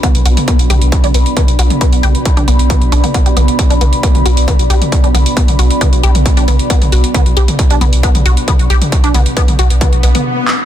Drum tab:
HH |xxoxxxoxxxoxxxox|xxoxxxoxxxoxxxox|xxoxxxoxxxoxxxox|xxoxxxoxxxoxxxox|
CP |----------------|----------------|----------------|----------------|
T2 |o--o--o--o--o--o|--o--o--o--o--o-|--o--o--o--o--o-|-o--o--o--o--o--|
BD |o---o---o---o---|o---o---o---o---|o---o---o---o---|o---o---o---o---|

HH |xxoxxxoxxxoxxxox|xxoxxxoxxxox----|
CP |----------------|--------------x-|
T2 |o--o--o--o--o--o|--o--o--o--o----|
BD |o---o---o---o---|o---o---o-------|